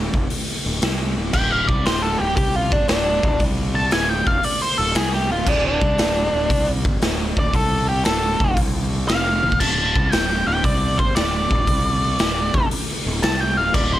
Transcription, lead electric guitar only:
1.34 1.51 G5 loud
1.50 1.67 F5 medium
1.67 1.86 D5 medium
1.86 2.02 C5 medium
2.02 2.19 A4 medium
2.18 2.35 G4 medium
2.36 2.56 G4 loud
2.56 2.72 F4 medium
2.72 2.88 D4 medium
2.89 3.39 D4 medium
3.75 3.92 A5 medium
3.93 4.09 G#5 medium
4.09 4.27 G5 medium
4.27 4.44 F5 medium
4.44 4.62 D5 loud
4.62 4.78 C5 medium
4.78 4.95 A4 medium
4.96 5.12 G#4 medium
5.14 5.30 G4 medium
5.32 5.48 F4 medium
5.49 5.65 D4 medium
5.66 6.66 D4 loud
7.39 7.54 D5 loud
7.54 7.88 A4 loud
7.89 8.05 G4 medium
8.05 8.56 A4 loud
9.08 9.59 F5 loud
9.60 10.12 A5 loud
10.12 10.46 G5 medium
10.48 10.64 G5 medium
10.65 10.99 D5 loud
10.98 11.15 C5 medium
11.15 12.67 D5 medium
13.23 13.41 A5 loud
13.41 13.57 G5 medium
13.57 13.74 F5 medium
13.74 13.91 D5 loud
13.93 13.99 C5 loud

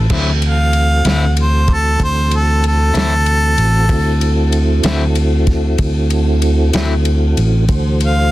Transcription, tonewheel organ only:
0.10 3.86 E3 medium
0.10 3.86 C4 medium
0.10 3.86 F#4 medium
0.10 3.86 A4 medium
3.89 7.65 C4 medium
3.89 7.65 E4 medium
3.89 7.65 F#4 medium
3.89 7.65 A4 medium
7.70 8.32 E3 medium
7.70 8.32 F#4 medium
7.70 8.32 A4 medium
7.70 8.32 C5 medium

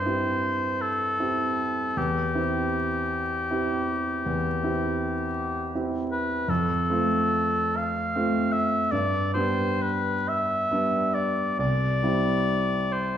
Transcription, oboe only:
0.00 0.83 C5 soft
0.81 1.99 A4 soft
1.98 5.75 G4 soft
6.11 6.51 B4 soft
6.50 7.78 A4 soft
7.77 8.53 F5 medium
8.52 8.93 E5 soft
8.92 9.33 D5 soft
9.34 9.83 C5 soft
9.82 10.30 B4 soft
10.29 11.16 E5 medium
11.14 11.58 D5 soft
11.60 12.93 D5 medium
12.92 13.18 C5 soft

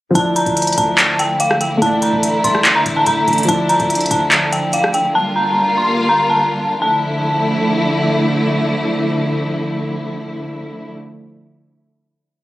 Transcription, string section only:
0.15 6.78 D3 medium
0.15 1.80 F3 medium
0.15 5.11 A3 medium
0.15 5.11 E4 loud
1.82 3.47 E3 medium
3.48 5.13 F3 medium
5.15 6.80 G3 medium
5.15 6.80 A#3 medium
5.15 6.80 F4 medium
6.82 10.91 D3 medium
6.82 10.91 F3 medium
6.82 10.91 A3 medium
6.82 10.91 E4 loud

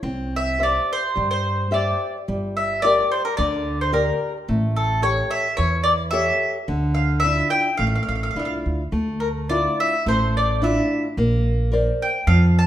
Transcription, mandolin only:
0.36 0.63 E5 medium
0.63 0.89 D5 medium
0.93 1.29 C5 medium
1.31 1.69 C5 medium
1.74 2.12 D5 medium
2.57 2.82 E5 medium
2.82 3.10 D5 medium
3.12 3.24 C5 medium
3.25 3.37 A#4 medium
3.37 3.77 D5 medium
3.81 3.93 C5 medium
3.94 4.32 A#4 medium
4.76 5.01 A4 medium
5.03 5.33 C#5 medium
5.31 5.56 E5 medium
5.57 5.83 C#5 medium
5.84 5.91 D5 medium
6.11 6.50 E5 medium
6.94 7.19 F5 medium
7.20 7.48 E5 medium
7.50 7.77 G5 medium
7.77 7.85 F5 medium
7.95 8.02 F5 soft
8.03 8.07 F5 soft
8.09 8.14 F5 soft
8.15 8.22 F5 soft
8.23 8.29 F5 medium
8.31 8.38 F5 soft
8.39 8.44 F5 soft
8.45 8.53 F5 soft
9.20 9.28 A#4 medium
9.49 9.76 D5 medium
9.80 10.04 E5 medium
10.08 10.34 C5 medium
10.37 10.61 D5 medium
10.64 11.02 E5 medium
12.02 12.26 G5 medium
12.27 12.57 F5 medium
12.59 12.67 A5 medium

